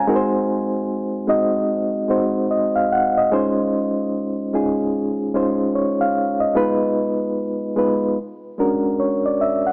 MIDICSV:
0, 0, Header, 1, 2, 480
1, 0, Start_track
1, 0, Tempo, 810811
1, 33, Time_signature, 4, 2, 24, 8
1, 5757, End_track
2, 0, Start_track
2, 0, Title_t, "Reed electric piano"
2, 0, Program_c, 0, 4
2, 0, Control_c, 0, 64, 127
2, 0, Note_on_c, 0, 80, 53
2, 41, Control_c, 0, 64, 0
2, 42, Note_on_c, 0, 56, 90
2, 47, Note_on_c, 0, 60, 81
2, 48, Note_on_c, 0, 63, 88
2, 53, Note_on_c, 0, 70, 80
2, 54, Note_on_c, 0, 66, 86
2, 90, Note_off_c, 0, 70, 0
2, 93, Note_on_c, 0, 72, 103
2, 128, Control_c, 0, 64, 127
2, 175, Note_off_c, 0, 80, 0
2, 723, Note_off_c, 0, 56, 0
2, 725, Note_off_c, 0, 60, 0
2, 726, Note_off_c, 0, 63, 0
2, 729, Note_off_c, 0, 66, 0
2, 748, Note_off_c, 0, 72, 0
2, 753, Note_on_c, 0, 56, 63
2, 758, Note_on_c, 0, 60, 62
2, 761, Note_on_c, 0, 63, 62
2, 763, Note_on_c, 0, 66, 60
2, 767, Note_on_c, 0, 75, 77
2, 1210, Note_off_c, 0, 56, 0
2, 1212, Note_off_c, 0, 60, 0
2, 1214, Note_off_c, 0, 63, 0
2, 1215, Note_off_c, 0, 66, 0
2, 1217, Note_off_c, 0, 75, 0
2, 1234, Note_on_c, 0, 56, 64
2, 1240, Note_on_c, 0, 60, 62
2, 1242, Note_on_c, 0, 63, 61
2, 1244, Note_on_c, 0, 66, 61
2, 1247, Note_on_c, 0, 72, 72
2, 1485, Note_on_c, 0, 75, 55
2, 1619, Note_off_c, 0, 75, 0
2, 1631, Note_on_c, 0, 77, 59
2, 1714, Note_off_c, 0, 77, 0
2, 1731, Note_on_c, 0, 78, 58
2, 1862, Note_off_c, 0, 78, 0
2, 1880, Note_on_c, 0, 75, 53
2, 1919, Note_off_c, 0, 56, 0
2, 1922, Note_off_c, 0, 60, 0
2, 1923, Note_off_c, 0, 63, 0
2, 1924, Note_off_c, 0, 66, 0
2, 1925, Note_off_c, 0, 72, 0
2, 1960, Control_c, 0, 64, 0
2, 1964, Note_on_c, 0, 56, 92
2, 1966, Note_on_c, 0, 61, 87
2, 1969, Note_on_c, 0, 63, 82
2, 1972, Note_on_c, 0, 65, 81
2, 1973, Note_on_c, 0, 72, 101
2, 2064, Control_c, 0, 64, 127
2, 2099, Note_off_c, 0, 75, 0
2, 2643, Note_off_c, 0, 56, 0
2, 2645, Note_off_c, 0, 61, 0
2, 2646, Note_off_c, 0, 63, 0
2, 2648, Note_off_c, 0, 65, 0
2, 2648, Note_off_c, 0, 72, 0
2, 2684, Note_on_c, 0, 56, 62
2, 2684, Note_on_c, 0, 61, 58
2, 2688, Note_on_c, 0, 63, 57
2, 2690, Note_on_c, 0, 65, 59
2, 2694, Note_on_c, 0, 68, 74
2, 3135, Note_off_c, 0, 56, 0
2, 3135, Note_off_c, 0, 61, 0
2, 3137, Note_off_c, 0, 63, 0
2, 3138, Note_off_c, 0, 65, 0
2, 3140, Note_off_c, 0, 68, 0
2, 3161, Note_on_c, 0, 56, 70
2, 3163, Note_on_c, 0, 61, 69
2, 3167, Note_on_c, 0, 63, 70
2, 3168, Note_on_c, 0, 65, 67
2, 3174, Note_on_c, 0, 72, 80
2, 3404, Note_off_c, 0, 72, 0
2, 3406, Note_on_c, 0, 73, 57
2, 3539, Note_off_c, 0, 73, 0
2, 3557, Note_on_c, 0, 77, 59
2, 3777, Note_off_c, 0, 77, 0
2, 3791, Note_on_c, 0, 75, 53
2, 3842, Note_off_c, 0, 56, 0
2, 3843, Note_off_c, 0, 61, 0
2, 3845, Note_off_c, 0, 63, 0
2, 3846, Note_off_c, 0, 65, 0
2, 3877, Note_on_c, 0, 56, 84
2, 3880, Control_c, 0, 64, 0
2, 3880, Note_on_c, 0, 59, 78
2, 3884, Note_on_c, 0, 63, 83
2, 3886, Note_on_c, 0, 65, 85
2, 3888, Note_on_c, 0, 71, 101
2, 3972, Control_c, 0, 64, 127
2, 4014, Note_off_c, 0, 75, 0
2, 4560, Note_off_c, 0, 56, 0
2, 4562, Note_off_c, 0, 59, 0
2, 4564, Note_off_c, 0, 63, 0
2, 4565, Note_off_c, 0, 65, 0
2, 4566, Note_off_c, 0, 71, 0
2, 4595, Note_on_c, 0, 56, 71
2, 4600, Note_on_c, 0, 59, 61
2, 4601, Note_on_c, 0, 63, 58
2, 4605, Note_on_c, 0, 65, 60
2, 4608, Note_on_c, 0, 71, 75
2, 4834, Note_off_c, 0, 56, 0
2, 4836, Note_off_c, 0, 59, 0
2, 4837, Note_off_c, 0, 63, 0
2, 4839, Note_off_c, 0, 65, 0
2, 4840, Note_off_c, 0, 71, 0
2, 4841, Control_c, 0, 64, 0
2, 4949, Control_c, 0, 64, 127
2, 5080, Note_on_c, 0, 56, 69
2, 5085, Note_on_c, 0, 61, 62
2, 5086, Note_on_c, 0, 62, 59
2, 5089, Note_on_c, 0, 66, 61
2, 5091, Note_on_c, 0, 70, 72
2, 5326, Note_on_c, 0, 73, 53
2, 5460, Note_off_c, 0, 73, 0
2, 5481, Note_on_c, 0, 74, 60
2, 5559, Note_off_c, 0, 74, 0
2, 5572, Note_on_c, 0, 76, 59
2, 5703, Note_off_c, 0, 76, 0
2, 5722, Note_on_c, 0, 78, 53
2, 5757, Note_off_c, 0, 56, 0
2, 5757, Note_off_c, 0, 61, 0
2, 5757, Note_off_c, 0, 62, 0
2, 5757, Note_off_c, 0, 66, 0
2, 5757, Note_off_c, 0, 70, 0
2, 5757, Note_off_c, 0, 78, 0
2, 5757, End_track
0, 0, End_of_file